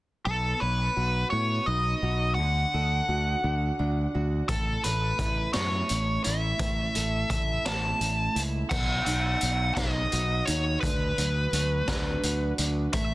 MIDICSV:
0, 0, Header, 1, 5, 480
1, 0, Start_track
1, 0, Tempo, 705053
1, 172, Time_signature, 6, 3, 24, 8
1, 8947, End_track
2, 0, Start_track
2, 0, Title_t, "Lead electric guitar"
2, 0, Program_c, 0, 29
2, 172, Note_on_c, 0, 69, 66
2, 409, Note_on_c, 0, 71, 74
2, 420, Note_off_c, 0, 69, 0
2, 864, Note_off_c, 0, 71, 0
2, 885, Note_on_c, 0, 73, 73
2, 1131, Note_on_c, 0, 75, 90
2, 1137, Note_off_c, 0, 73, 0
2, 1593, Note_off_c, 0, 75, 0
2, 1596, Note_on_c, 0, 78, 77
2, 2779, Note_off_c, 0, 78, 0
2, 3057, Note_on_c, 0, 69, 65
2, 3292, Note_on_c, 0, 71, 78
2, 3304, Note_off_c, 0, 69, 0
2, 3747, Note_off_c, 0, 71, 0
2, 3765, Note_on_c, 0, 73, 76
2, 4245, Note_off_c, 0, 73, 0
2, 4248, Note_on_c, 0, 76, 90
2, 4966, Note_off_c, 0, 76, 0
2, 4974, Note_on_c, 0, 76, 86
2, 5211, Note_on_c, 0, 81, 85
2, 5222, Note_off_c, 0, 76, 0
2, 5726, Note_off_c, 0, 81, 0
2, 5919, Note_on_c, 0, 78, 97
2, 6154, Note_off_c, 0, 78, 0
2, 6162, Note_on_c, 0, 78, 100
2, 6634, Note_off_c, 0, 78, 0
2, 6637, Note_on_c, 0, 75, 83
2, 7117, Note_on_c, 0, 73, 83
2, 7140, Note_off_c, 0, 75, 0
2, 7353, Note_off_c, 0, 73, 0
2, 7356, Note_on_c, 0, 71, 70
2, 8535, Note_off_c, 0, 71, 0
2, 8804, Note_on_c, 0, 76, 91
2, 8947, Note_off_c, 0, 76, 0
2, 8947, End_track
3, 0, Start_track
3, 0, Title_t, "Steel-string acoustic guitar"
3, 0, Program_c, 1, 25
3, 178, Note_on_c, 1, 59, 64
3, 414, Note_on_c, 1, 73, 62
3, 656, Note_on_c, 1, 66, 58
3, 889, Note_off_c, 1, 59, 0
3, 897, Note_on_c, 1, 59, 56
3, 1136, Note_on_c, 1, 63, 59
3, 1374, Note_off_c, 1, 66, 0
3, 1383, Note_on_c, 1, 66, 61
3, 1615, Note_off_c, 1, 63, 0
3, 1615, Note_off_c, 1, 73, 0
3, 1616, Note_off_c, 1, 59, 0
3, 1618, Note_off_c, 1, 66, 0
3, 1625, Note_on_c, 1, 50, 63
3, 1865, Note_on_c, 1, 69, 63
3, 2102, Note_on_c, 1, 66, 57
3, 2331, Note_off_c, 1, 50, 0
3, 2339, Note_on_c, 1, 50, 57
3, 2581, Note_on_c, 1, 62, 60
3, 2814, Note_off_c, 1, 66, 0
3, 2822, Note_on_c, 1, 66, 57
3, 3054, Note_on_c, 1, 45, 63
3, 3058, Note_off_c, 1, 50, 0
3, 3058, Note_off_c, 1, 62, 0
3, 3059, Note_off_c, 1, 66, 0
3, 3294, Note_off_c, 1, 69, 0
3, 3296, Note_on_c, 1, 69, 63
3, 3537, Note_on_c, 1, 64, 62
3, 3774, Note_on_c, 1, 57, 62
3, 4011, Note_on_c, 1, 61, 61
3, 4241, Note_off_c, 1, 64, 0
3, 4249, Note_on_c, 1, 64, 60
3, 4255, Note_off_c, 1, 45, 0
3, 4486, Note_on_c, 1, 45, 67
3, 4496, Note_off_c, 1, 69, 0
3, 4734, Note_on_c, 1, 69, 67
3, 4963, Note_off_c, 1, 64, 0
3, 4971, Note_on_c, 1, 64, 61
3, 4975, Note_off_c, 1, 57, 0
3, 5207, Note_on_c, 1, 57, 61
3, 5213, Note_off_c, 1, 61, 0
3, 5442, Note_on_c, 1, 61, 59
3, 5677, Note_off_c, 1, 64, 0
3, 5685, Note_on_c, 1, 64, 62
3, 5691, Note_off_c, 1, 45, 0
3, 5924, Note_off_c, 1, 57, 0
3, 5926, Note_on_c, 1, 59, 68
3, 5929, Note_off_c, 1, 61, 0
3, 5930, Note_off_c, 1, 64, 0
3, 5934, Note_off_c, 1, 69, 0
3, 6168, Note_on_c, 1, 63, 57
3, 6406, Note_off_c, 1, 59, 0
3, 6414, Note_on_c, 1, 59, 63
3, 6641, Note_off_c, 1, 63, 0
3, 6650, Note_on_c, 1, 63, 60
3, 6892, Note_on_c, 1, 66, 61
3, 7121, Note_off_c, 1, 63, 0
3, 7129, Note_on_c, 1, 63, 63
3, 7371, Note_off_c, 1, 63, 0
3, 7372, Note_off_c, 1, 66, 0
3, 7373, Note_off_c, 1, 59, 0
3, 7375, Note_on_c, 1, 50, 68
3, 7621, Note_on_c, 1, 54, 63
3, 7858, Note_on_c, 1, 57, 63
3, 8102, Note_on_c, 1, 62, 62
3, 8336, Note_on_c, 1, 66, 66
3, 8564, Note_off_c, 1, 62, 0
3, 8572, Note_off_c, 1, 50, 0
3, 8573, Note_on_c, 1, 62, 65
3, 8806, Note_off_c, 1, 57, 0
3, 8809, Note_on_c, 1, 57, 73
3, 8811, Note_off_c, 1, 62, 0
3, 8813, Note_off_c, 1, 66, 0
3, 8814, Note_off_c, 1, 54, 0
3, 8947, Note_off_c, 1, 57, 0
3, 8947, End_track
4, 0, Start_track
4, 0, Title_t, "Fingered electric bass"
4, 0, Program_c, 2, 33
4, 180, Note_on_c, 2, 35, 76
4, 356, Note_off_c, 2, 35, 0
4, 422, Note_on_c, 2, 35, 73
4, 598, Note_off_c, 2, 35, 0
4, 660, Note_on_c, 2, 35, 76
4, 837, Note_off_c, 2, 35, 0
4, 900, Note_on_c, 2, 45, 71
4, 1077, Note_off_c, 2, 45, 0
4, 1139, Note_on_c, 2, 35, 72
4, 1316, Note_off_c, 2, 35, 0
4, 1378, Note_on_c, 2, 35, 76
4, 1624, Note_off_c, 2, 35, 0
4, 1624, Note_on_c, 2, 38, 81
4, 1799, Note_off_c, 2, 38, 0
4, 1866, Note_on_c, 2, 38, 68
4, 2041, Note_off_c, 2, 38, 0
4, 2100, Note_on_c, 2, 38, 71
4, 2277, Note_off_c, 2, 38, 0
4, 2342, Note_on_c, 2, 38, 76
4, 2518, Note_off_c, 2, 38, 0
4, 2584, Note_on_c, 2, 38, 76
4, 2760, Note_off_c, 2, 38, 0
4, 2826, Note_on_c, 2, 38, 77
4, 3001, Note_off_c, 2, 38, 0
4, 3057, Note_on_c, 2, 33, 80
4, 3235, Note_off_c, 2, 33, 0
4, 3306, Note_on_c, 2, 33, 74
4, 3481, Note_off_c, 2, 33, 0
4, 3536, Note_on_c, 2, 33, 80
4, 3715, Note_off_c, 2, 33, 0
4, 3782, Note_on_c, 2, 42, 77
4, 3959, Note_off_c, 2, 42, 0
4, 4022, Note_on_c, 2, 33, 79
4, 4199, Note_off_c, 2, 33, 0
4, 4265, Note_on_c, 2, 33, 78
4, 4441, Note_off_c, 2, 33, 0
4, 4492, Note_on_c, 2, 33, 84
4, 4673, Note_off_c, 2, 33, 0
4, 4743, Note_on_c, 2, 33, 80
4, 4919, Note_off_c, 2, 33, 0
4, 4971, Note_on_c, 2, 33, 73
4, 5152, Note_off_c, 2, 33, 0
4, 5212, Note_on_c, 2, 33, 72
4, 5392, Note_off_c, 2, 33, 0
4, 5451, Note_on_c, 2, 33, 79
4, 5631, Note_off_c, 2, 33, 0
4, 5690, Note_on_c, 2, 37, 78
4, 5871, Note_off_c, 2, 37, 0
4, 5931, Note_on_c, 2, 35, 82
4, 6121, Note_off_c, 2, 35, 0
4, 6169, Note_on_c, 2, 35, 73
4, 6360, Note_off_c, 2, 35, 0
4, 6418, Note_on_c, 2, 35, 78
4, 6605, Note_off_c, 2, 35, 0
4, 6650, Note_on_c, 2, 35, 75
4, 6840, Note_off_c, 2, 35, 0
4, 6896, Note_on_c, 2, 35, 83
4, 7084, Note_off_c, 2, 35, 0
4, 7136, Note_on_c, 2, 39, 81
4, 7324, Note_off_c, 2, 39, 0
4, 7374, Note_on_c, 2, 38, 83
4, 7562, Note_off_c, 2, 38, 0
4, 7611, Note_on_c, 2, 38, 81
4, 7800, Note_off_c, 2, 38, 0
4, 7848, Note_on_c, 2, 38, 84
4, 8038, Note_off_c, 2, 38, 0
4, 8087, Note_on_c, 2, 38, 83
4, 8277, Note_off_c, 2, 38, 0
4, 8330, Note_on_c, 2, 38, 79
4, 8519, Note_off_c, 2, 38, 0
4, 8570, Note_on_c, 2, 38, 88
4, 8758, Note_off_c, 2, 38, 0
4, 8809, Note_on_c, 2, 33, 79
4, 8947, Note_off_c, 2, 33, 0
4, 8947, End_track
5, 0, Start_track
5, 0, Title_t, "Drums"
5, 3054, Note_on_c, 9, 42, 67
5, 3055, Note_on_c, 9, 36, 91
5, 3123, Note_off_c, 9, 36, 0
5, 3123, Note_off_c, 9, 42, 0
5, 3294, Note_on_c, 9, 42, 47
5, 3362, Note_off_c, 9, 42, 0
5, 3532, Note_on_c, 9, 36, 72
5, 3533, Note_on_c, 9, 42, 53
5, 3600, Note_off_c, 9, 36, 0
5, 3601, Note_off_c, 9, 42, 0
5, 3767, Note_on_c, 9, 42, 64
5, 3768, Note_on_c, 9, 38, 85
5, 3835, Note_off_c, 9, 42, 0
5, 3837, Note_off_c, 9, 38, 0
5, 4010, Note_on_c, 9, 42, 56
5, 4078, Note_off_c, 9, 42, 0
5, 4250, Note_on_c, 9, 42, 55
5, 4318, Note_off_c, 9, 42, 0
5, 4488, Note_on_c, 9, 42, 74
5, 4489, Note_on_c, 9, 36, 96
5, 4556, Note_off_c, 9, 42, 0
5, 4557, Note_off_c, 9, 36, 0
5, 4731, Note_on_c, 9, 42, 56
5, 4800, Note_off_c, 9, 42, 0
5, 4969, Note_on_c, 9, 36, 69
5, 4970, Note_on_c, 9, 42, 56
5, 5037, Note_off_c, 9, 36, 0
5, 5038, Note_off_c, 9, 42, 0
5, 5212, Note_on_c, 9, 42, 72
5, 5213, Note_on_c, 9, 38, 87
5, 5280, Note_off_c, 9, 42, 0
5, 5281, Note_off_c, 9, 38, 0
5, 5453, Note_on_c, 9, 42, 63
5, 5521, Note_off_c, 9, 42, 0
5, 5692, Note_on_c, 9, 42, 58
5, 5760, Note_off_c, 9, 42, 0
5, 5929, Note_on_c, 9, 36, 99
5, 5929, Note_on_c, 9, 49, 83
5, 5997, Note_off_c, 9, 36, 0
5, 5997, Note_off_c, 9, 49, 0
5, 6169, Note_on_c, 9, 42, 56
5, 6237, Note_off_c, 9, 42, 0
5, 6405, Note_on_c, 9, 42, 58
5, 6473, Note_off_c, 9, 42, 0
5, 6648, Note_on_c, 9, 36, 66
5, 6649, Note_on_c, 9, 42, 67
5, 6650, Note_on_c, 9, 38, 99
5, 6717, Note_off_c, 9, 36, 0
5, 6717, Note_off_c, 9, 42, 0
5, 6718, Note_off_c, 9, 38, 0
5, 6889, Note_on_c, 9, 42, 56
5, 6957, Note_off_c, 9, 42, 0
5, 7130, Note_on_c, 9, 42, 54
5, 7198, Note_off_c, 9, 42, 0
5, 7371, Note_on_c, 9, 36, 97
5, 7375, Note_on_c, 9, 42, 75
5, 7440, Note_off_c, 9, 36, 0
5, 7443, Note_off_c, 9, 42, 0
5, 7611, Note_on_c, 9, 42, 53
5, 7679, Note_off_c, 9, 42, 0
5, 7850, Note_on_c, 9, 42, 57
5, 7918, Note_off_c, 9, 42, 0
5, 8085, Note_on_c, 9, 42, 70
5, 8086, Note_on_c, 9, 38, 94
5, 8088, Note_on_c, 9, 36, 70
5, 8153, Note_off_c, 9, 42, 0
5, 8154, Note_off_c, 9, 38, 0
5, 8156, Note_off_c, 9, 36, 0
5, 8329, Note_on_c, 9, 42, 60
5, 8397, Note_off_c, 9, 42, 0
5, 8565, Note_on_c, 9, 42, 61
5, 8633, Note_off_c, 9, 42, 0
5, 8802, Note_on_c, 9, 42, 80
5, 8806, Note_on_c, 9, 36, 99
5, 8870, Note_off_c, 9, 42, 0
5, 8874, Note_off_c, 9, 36, 0
5, 8947, End_track
0, 0, End_of_file